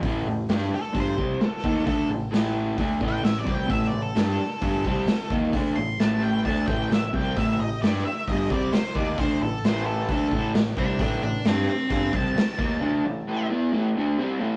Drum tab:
HH |o-o-o-o-|o-o-o-o-|o-o-o-o-|o-o-o-o-|
SD |--o---o-|--o---o-|--o---o-|--o---o-|
BD |o---oo-o|o---oo-o|o---oo-o|o---oo-o|

HH |o-o-o-o-|o-o-o-o-|o-o-o-o-|--------|
SD |--o---o-|--o---o-|--o---o-|--------|
BD |o---oo-o|o---oo-o|o---oo-o|--------|